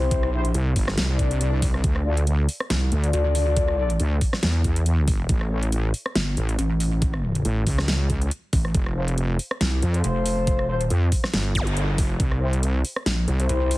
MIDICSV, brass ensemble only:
0, 0, Header, 1, 2, 480
1, 0, Start_track
1, 0, Key_signature, -1, "minor"
1, 0, Tempo, 431655
1, 125, Time_signature, 4, 2, 24, 8
1, 15322, End_track
2, 0, Start_track
2, 0, Title_t, "Brass ensemble"
2, 0, Program_c, 0, 61
2, 0, Note_on_c, 0, 64, 84
2, 0, Note_on_c, 0, 67, 80
2, 0, Note_on_c, 0, 72, 96
2, 339, Note_off_c, 0, 64, 0
2, 339, Note_off_c, 0, 67, 0
2, 339, Note_off_c, 0, 72, 0
2, 365, Note_on_c, 0, 64, 100
2, 365, Note_on_c, 0, 67, 92
2, 365, Note_on_c, 0, 72, 112
2, 509, Note_off_c, 0, 64, 0
2, 509, Note_off_c, 0, 67, 0
2, 509, Note_off_c, 0, 72, 0
2, 2284, Note_on_c, 0, 65, 81
2, 2284, Note_on_c, 0, 69, 76
2, 2284, Note_on_c, 0, 74, 90
2, 2376, Note_off_c, 0, 65, 0
2, 2376, Note_off_c, 0, 69, 0
2, 2376, Note_off_c, 0, 74, 0
2, 3375, Note_on_c, 0, 65, 86
2, 3375, Note_on_c, 0, 69, 79
2, 3376, Note_on_c, 0, 74, 95
2, 4178, Note_off_c, 0, 65, 0
2, 4178, Note_off_c, 0, 69, 0
2, 4178, Note_off_c, 0, 74, 0
2, 4204, Note_on_c, 0, 65, 99
2, 4204, Note_on_c, 0, 69, 94
2, 4204, Note_on_c, 0, 74, 111
2, 4349, Note_off_c, 0, 65, 0
2, 4349, Note_off_c, 0, 69, 0
2, 4349, Note_off_c, 0, 74, 0
2, 6124, Note_on_c, 0, 64, 81
2, 6124, Note_on_c, 0, 69, 75
2, 6124, Note_on_c, 0, 73, 92
2, 6216, Note_off_c, 0, 64, 0
2, 6216, Note_off_c, 0, 69, 0
2, 6216, Note_off_c, 0, 73, 0
2, 9964, Note_on_c, 0, 69, 74
2, 9965, Note_on_c, 0, 65, 79
2, 9965, Note_on_c, 0, 72, 90
2, 10056, Note_off_c, 0, 69, 0
2, 10056, Note_off_c, 0, 72, 0
2, 10057, Note_off_c, 0, 65, 0
2, 11056, Note_on_c, 0, 65, 88
2, 11056, Note_on_c, 0, 69, 79
2, 11056, Note_on_c, 0, 72, 95
2, 11859, Note_off_c, 0, 65, 0
2, 11859, Note_off_c, 0, 69, 0
2, 11859, Note_off_c, 0, 72, 0
2, 11884, Note_on_c, 0, 69, 92
2, 11884, Note_on_c, 0, 72, 111
2, 11885, Note_on_c, 0, 65, 100
2, 12029, Note_off_c, 0, 65, 0
2, 12029, Note_off_c, 0, 69, 0
2, 12029, Note_off_c, 0, 72, 0
2, 13804, Note_on_c, 0, 67, 76
2, 13804, Note_on_c, 0, 72, 93
2, 13805, Note_on_c, 0, 64, 83
2, 13896, Note_off_c, 0, 67, 0
2, 13896, Note_off_c, 0, 72, 0
2, 13897, Note_off_c, 0, 64, 0
2, 14896, Note_on_c, 0, 64, 88
2, 14896, Note_on_c, 0, 67, 81
2, 14896, Note_on_c, 0, 72, 97
2, 15322, Note_off_c, 0, 64, 0
2, 15322, Note_off_c, 0, 67, 0
2, 15322, Note_off_c, 0, 72, 0
2, 15322, End_track
0, 0, End_of_file